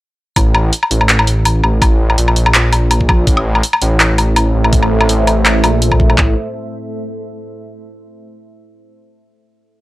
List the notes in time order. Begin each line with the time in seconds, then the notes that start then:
0.36 A1, kick, closed hi-hat, low woodblock
0.55 low woodblock
0.73 closed hi-hat
0.83 low woodblock
0.91 A1, closed hi-hat
1.01 low woodblock
1.09 clap, closed hi-hat
1.19 low woodblock
1.27 closed hi-hat
1.45 closed hi-hat, low woodblock
1.64 A1, low woodblock
1.82 kick, closed hi-hat, low woodblock
2.10 low woodblock
2.18 A#1, closed hi-hat
2.28 low woodblock
2.36 closed hi-hat
2.46 low woodblock
2.54 clap, closed hi-hat
2.73 closed hi-hat, low woodblock
2.91 closed hi-hat, low woodblock
3.01 kick
3.09 kick, low woodblock
3.27 A1 A3, kick, closed hi-hat
3.37 A4 E5, low woodblock
3.55 C5, low woodblock
3.63 closed hi-hat
3.73 low woodblock
3.81 A1, closed hi-hat
4.00 clap, closed hi-hat, low woodblock
4.18 closed hi-hat, low woodblock
4.36 closed hi-hat, low woodblock
4.54 A1
4.64 low woodblock
4.73 kick, closed hi-hat
4.82 low woodblock
5.01 low woodblock
5.09 A1, closed hi-hat
5.27 closed hi-hat, low woodblock
5.46 clap, closed hi-hat, low woodblock
5.63 A#1, closed hi-hat, low woodblock
5.82 closed hi-hat
5.92 kick, low woodblock
6.00 kick
6.10 low woodblock
6.18 A1 A3, kick, clap
6.24 A4
6.30 C5
6.35 E5